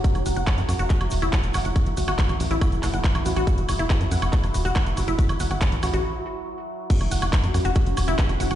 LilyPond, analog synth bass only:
\new Staff \with { instrumentName = "Analog synth bass" } { \clef bass \time 4/4 \key fis \minor \tempo 4 = 140 r16 fis,,16 fis,,16 fis,,16 r16 fis,16 fis,16 fis,,16 r16 fis,,16 e,,16 fis,,16 r16 fis,,16 fis,,16 fis,,16 | r16 g,,16 g,,16 g,,16 r16 a,,16 a,,16 a,,16 r16 fis,,16 fis,,16 fis,,16 r16 a,,16 a,,16 a,,16 | r16 fis,,16 fis,,16 fis,,16 r16 fis,16 fis,16 fis,,16 r16 fis,,16 e,,16 fis,,16 r16 fis,,16 fis,,16 fis,,16 | r16 g,,16 g,,16 g,,16 r16 a,,16 a,,16 a,,16 r2 |
r16 fis,,16 fis,,16 fis,,16 r16 fis,16 fis,16 fis,,16 r16 fis,,16 e,,16 fis,,16 r16 fis,,16 fis,,16 fis,,16 | }